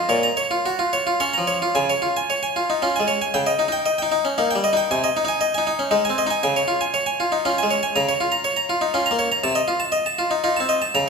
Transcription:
0.09 0.27 A#2 medium
0.09 0.24 C#5 medium
0.23 0.38 A#5 medium
0.37 0.52 C#5 medium
0.51 0.65 F4 medium
0.66 0.79 F#4 medium
0.79 0.93 F4 medium
0.93 1.07 C#5 medium
1.07 1.21 F4 medium
1.20 1.40 C#4 medium
1.20 1.35 C#5 medium
1.33 1.48 A#5 medium
1.38 1.58 F3 medium
1.47 1.62 C#5 medium
1.62 1.76 F4 medium
1.75 1.93 C#3 medium
1.75 1.90 G#5 medium
1.90 2.04 C#5 soft
2.02 2.17 F4 soft
2.17 2.30 G#5 soft
2.30 2.44 C#5 soft
2.43 2.57 G#5 soft
2.56 2.70 F4 soft
2.70 2.83 D#4 soft
2.82 3.01 C#4 soft
2.82 2.96 F4 soft
2.96 3.18 G#3 soft
2.96 3.09 G#5 soft
3.08 3.22 C#5 medium
3.22 3.35 G#5 soft
3.34 3.51 C#3 medium
3.34 3.48 G5 medium
3.46 3.61 D#5 soft
3.59 3.67 D#4 soft
3.68 3.87 D#4 soft
3.68 3.86 G5 soft
3.86 4.00 D#5 soft
3.98 4.10 D#4 soft
3.98 4.13 G5 medium
4.12 4.26 D#4 medium
4.25 4.38 C#4 soft
4.38 4.57 A#3 soft
4.38 4.52 D#4 soft
4.51 4.65 G5 medium
4.55 4.74 G3 soft
4.64 4.78 D#5 medium
4.73 4.91 D#4 soft
4.73 4.90 G5 medium
4.91 5.08 C3 medium
4.91 5.05 G#5 medium
5.04 5.17 D#5 medium
5.17 5.24 D#4 soft
5.25 5.43 D#4 soft
5.25 5.42 G#5 soft
5.41 5.55 D#5 medium
5.54 5.66 D#4 medium
5.54 5.68 G#5 medium
5.67 5.81 D#4 medium
5.79 5.92 C#4 soft
5.91 6.10 G#3 medium
5.91 6.05 D#4 medium
6.05 6.19 G#5 medium
6.10 6.27 C4 soft
6.18 6.32 D#5 medium
6.27 6.44 D#4 soft
6.27 6.42 G#5 medium
6.43 6.60 C#3 medium
6.43 6.57 G#5 medium
6.56 6.70 C#5 medium
6.68 6.82 F4 soft
6.81 6.94 G#5 medium
6.94 7.07 C#5 medium
7.06 7.20 G#5 medium
7.20 7.33 F4 medium
7.32 7.45 D#4 soft
7.45 7.62 C#4 medium
7.45 7.58 F4 medium
7.58 7.71 G#5 medium
7.63 7.79 G#3 medium
7.71 7.83 C#5 medium
7.83 7.95 G#5 medium
7.96 8.11 C#3 medium
7.96 8.08 A#5 medium
8.09 8.21 C#5 medium
8.20 8.33 F4 medium
8.32 8.45 A#5 medium
8.44 8.57 C#5 medium
8.57 8.69 A#5 medium
8.69 8.82 F4 medium
8.81 8.93 D#4 soft
8.94 9.11 C#4 medium
8.94 9.07 F4 medium
9.06 9.18 A#5 medium
9.11 9.27 A#3 soft
9.19 9.31 C#5 medium
9.32 9.43 A#5 medium
9.44 9.59 C3 medium
9.44 9.56 A5 medium
9.55 9.68 D#5 medium
9.68 9.80 F4 medium
9.80 9.93 A5 medium
9.92 10.05 D#5 medium
10.06 10.19 A5 medium
10.19 10.31 F4 medium
10.31 10.43 D#4 soft
10.44 10.61 D#4 medium
10.44 10.57 F4 medium
10.56 10.78 C4 soft
10.56 10.70 A5 medium
10.69 10.82 D#5 medium
10.82 10.95 A5 medium
10.95 11.09 C#3 medium
10.95 11.08 A#5 medium

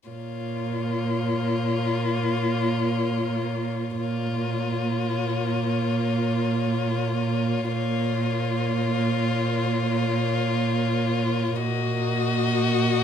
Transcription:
0.08 3.96 A#2 soft
0.08 3.96 A#3 soft
0.08 3.96 F4 soft
0.08 3.96 C#5 soft
3.99 7.69 A#2 soft
3.99 7.69 A#3 soft
3.99 7.69 F4 soft
3.99 7.70 C#5 soft
7.73 11.52 A#2 soft
7.73 11.52 A#3 soft
7.73 11.58 F4 soft
7.73 11.58 C#5 soft
11.56 13.04 A#2 soft
11.56 13.04 A#3 soft
11.56 13.04 F#4 soft
11.56 13.04 D#5 soft

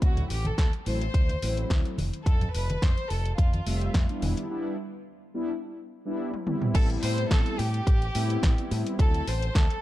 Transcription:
0.02 0.23 D2 medium
0.02 0.28 F#3 medium
0.02 0.28 A3 medium
0.02 0.28 C4 medium
0.02 0.28 E4 loud
0.02 0.28 F#4 medium
0.02 kick loud
0.02 closed hi-hat medium
0.17 closed hi-hat soft
0.17 low conga medium
0.30 0.51 A1 medium
0.30 0.44 G4 medium
0.30 open hi-hat medium
0.45 0.57 A4 medium
0.45 closed hi-hat soft
0.45 high conga medium
0.58 0.69 D2 medium
0.58 0.71 A4 medium
0.58 kick loud
0.58 snare loud
0.58 closed hi-hat medium
0.73 closed hi-hat soft
0.86 1.07 A1 medium
0.86 1.03 F#3 medium
0.86 1.03 A3 medium
0.86 1.03 C4 medium
0.86 1.04 E4 loud
0.86 1.66 C5 loud
0.86 open hi-hat medium
1.01 closed hi-hat soft
1.14 1.35 D2 medium
1.14 kick loud
1.14 closed hi-hat medium
1.29 closed hi-hat soft
1.29 high conga medium
1.42 1.63 A1 medium
1.42 1.97 F#3 medium
1.42 1.97 A3 medium
1.42 1.97 C4 medium
1.42 1.97 E4 loud
1.42 open hi-hat loud
1.57 closed hi-hat soft
1.70 1.81 D2 medium
1.70 kick loud
1.70 snare loud
1.70 closed hi-hat medium
1.85 closed hi-hat soft
1.98 2.09 F1 medium
1.98 open hi-hat medium
1.98 high conga medium
2.14 closed hi-hat soft
2.26 2.47 F2 medium
2.26 2.53 A4 loud
2.26 kick loud
2.26 closed hi-hat medium
2.41 closed hi-hat soft
2.41 low conga medium
2.54 2.75 F1 medium
2.54 2.81 B4 medium
2.54 open hi-hat medium
2.70 closed hi-hat soft
2.70 high conga medium
2.82 2.93 F2 medium
2.82 3.11 C5 loud
2.82 kick loud
2.82 snare loud
2.82 closed hi-hat medium
2.98 closed hi-hat soft
3.10 3.31 F1 medium
3.10 3.38 A4 loud
3.10 open hi-hat medium
3.26 closed hi-hat soft
3.38 3.59 F2 medium
3.38 4.19 F4 medium
3.38 kick loud
3.38 closed hi-hat medium
3.53 closed hi-hat soft
3.53 high conga medium
3.66 3.87 F1 medium
3.66 4.06 G3 medium
3.66 4.06 A3 medium
3.66 4.06 C4 medium
3.66 4.06 E5 loud
3.66 open hi-hat medium
3.81 closed hi-hat soft
3.94 4.05 F2 loud
3.94 kick loud
3.94 snare loud
3.94 closed hi-hat medium
4.09 4.47 G3 medium
4.09 4.47 B3 medium
4.09 4.47 D4 medium
4.09 4.48 E4 medium
4.09 closed hi-hat soft
4.22 4.33 E1 loud
4.22 open hi-hat medium
4.22 high conga medium
4.37 closed hi-hat soft
4.50 4.76 G3 medium
4.50 4.77 B3 medium
4.50 4.77 D4 medium
4.50 4.77 E4 loud
5.34 5.51 G3 medium
5.34 5.52 B3 medium
5.34 5.52 D4 medium
5.34 5.52 E4 loud
6.05 6.31 G3 medium
6.05 6.31 B3 medium
6.05 6.32 D4 medium
6.05 6.32 E4 loud
6.34 high tom soft
6.46 6.72 G3 medium
6.46 6.73 B3 medium
6.46 6.74 C4 medium
6.46 6.74 E4 loud
6.46 mid tom medium
6.62 mid tom medium
6.73 6.96 A1 loud
6.73 7.58 G3 loud
6.73 7.59 B3 medium
6.73 7.59 C4 medium
6.73 7.59 E4 loud
6.73 6.88 A4 loud
6.73 kick loud
6.73 closed hi-hat medium
6.73 crash loud
6.90 closed hi-hat soft
7.03 7.24 A2 medium
7.03 7.29 C5 loud
7.03 open hi-hat loud
7.18 closed hi-hat soft
7.31 7.42 A1 medium
7.31 7.57 A4 loud
7.31 kick loud
7.31 snare loud
7.31 closed hi-hat medium
7.46 closed hi-hat soft
7.59 7.80 A2 medium
7.59 8.71 G4 medium
7.59 open hi-hat medium
7.74 closed hi-hat soft
7.87 8.08 A1 medium
7.87 kick loud
7.87 closed hi-hat medium
8.02 closed hi-hat soft
8.14 8.36 A2 medium
8.14 8.54 G3 medium
8.14 8.54 B3 medium
8.14 8.54 C4 medium
8.14 8.55 E4 loud
8.14 open hi-hat loud
8.30 closed hi-hat soft
8.43 8.54 A1 loud
8.43 kick loud
8.43 snare loud
8.43 closed hi-hat medium
8.58 8.96 G3 medium
8.58 8.96 B3 medium
8.58 8.96 C4 medium
8.58 8.96 E4 medium
8.58 closed hi-hat soft
8.71 8.82 A2 loud
8.71 open hi-hat medium
8.86 closed hi-hat soft
8.99 9.20 D2 loud
8.99 9.25 F#3 medium
8.99 9.25 A3 medium
8.99 9.25 C4 medium
8.99 9.25 E4 loud
8.99 9.25 A4 loud
8.99 kick loud
8.99 closed hi-hat medium
9.14 closed hi-hat soft
9.27 9.48 A1 medium
9.27 9.55 C5 loud
9.27 open hi-hat loud
9.42 closed hi-hat soft
9.55 9.66 D2 medium
9.55 9.82 A4 loud
9.55 kick loud
9.55 snare loud
9.55 closed hi-hat medium
9.70 closed hi-hat soft

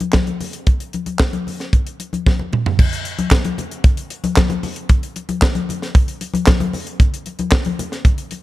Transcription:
0.00 closed hi-hat soft
0.00 high conga medium
0.13 kick loud
0.13 snare loud
0.13 clap medium
0.13 high conga medium
0.27 closed hi-hat soft
0.27 high conga medium
0.40 open hi-hat medium
0.40 muted conga soft
0.40 low conga medium
0.53 closed hi-hat medium
0.67 kick loud
0.67 closed hi-hat medium
0.67 muted conga soft
0.80 closed hi-hat medium
0.93 closed hi-hat soft
0.93 muted conga soft
0.93 high conga medium
1.06 closed hi-hat medium
1.06 high conga medium
1.19 kick loud
1.19 snare loud
1.19 clap medium
1.33 closed hi-hat soft
1.33 high conga medium
1.47 open hi-hat medium
1.47 low conga medium
1.60 snare soft
1.60 closed hi-hat soft
1.73 kick loud
1.73 closed hi-hat medium
1.87 closed hi-hat medium
2.00 closed hi-hat medium
2.00 muted conga soft
2.13 closed hi-hat soft
2.13 high conga medium
2.27 kick loud
2.27 snare medium
2.27 high conga medium
2.39 high conga medium
2.39 low conga medium
2.53 mid tom medium
2.53 muted conga soft
2.53 low conga medium
2.66 floor tom medium
2.79 kick loud
2.79 crash loud
2.79 muted conga soft
2.93 closed hi-hat medium
3.05 closed hi-hat medium
3.19 closed hi-hat soft
3.19 high conga medium
3.31 kick loud
3.31 snare loud
3.31 clap loud
3.45 closed hi-hat soft
3.45 high conga medium
3.58 closed hi-hat medium
3.58 muted conga soft
3.58 low conga medium
3.71 closed hi-hat soft
3.84 kick loud
3.84 closed hi-hat medium
3.97 closed hi-hat medium
4.10 closed hi-hat medium
4.24 closed hi-hat soft
4.24 high conga medium
4.36 kick loud
4.36 snare loud
4.36 clap loud
4.36 muted conga soft
4.36 high conga medium
4.50 closed hi-hat soft
4.50 high conga medium
4.50 low conga medium
4.63 open hi-hat medium
4.63 muted conga soft
4.63 low conga medium
4.76 closed hi-hat medium
4.89 kick loud
4.89 closed hi-hat medium
4.89 muted conga soft
5.03 closed hi-hat medium
5.16 closed hi-hat medium
5.16 muted conga soft
5.29 closed hi-hat medium
5.29 high conga medium
5.42 kick loud
5.42 snare loud
5.42 clap loud
5.55 closed hi-hat soft
5.55 high conga medium
5.69 closed hi-hat medium
5.69 low conga medium
5.82 snare soft
5.82 closed hi-hat soft
5.95 kick loud
5.95 closed hi-hat medium
6.08 closed hi-hat medium
6.21 closed hi-hat medium
6.21 muted conga soft
6.34 closed hi-hat medium
6.34 high conga medium
6.46 kick loud
6.46 snare loud
6.46 clap loud
6.46 muted conga soft
6.46 high conga loud
6.60 closed hi-hat soft
6.60 high conga medium
6.60 low conga medium
6.73 open hi-hat medium
6.73 muted conga soft
6.73 low conga medium
6.87 closed hi-hat medium
7.00 kick loud
7.00 closed hi-hat medium
7.14 closed hi-hat medium
7.26 closed hi-hat medium
7.26 muted conga soft
7.39 closed hi-hat medium
7.39 high conga medium
7.51 kick loud
7.51 snare loud
7.51 clap medium
7.51 muted conga soft
7.65 closed hi-hat soft
7.65 high conga medium
7.79 closed hi-hat medium
7.79 muted conga soft
7.79 low conga medium
7.92 snare soft
7.92 closed hi-hat soft
8.05 kick loud
8.05 closed hi-hat medium
8.05 muted conga soft
8.18 closed hi-hat medium
8.31 closed hi-hat medium
8.31 muted conga soft

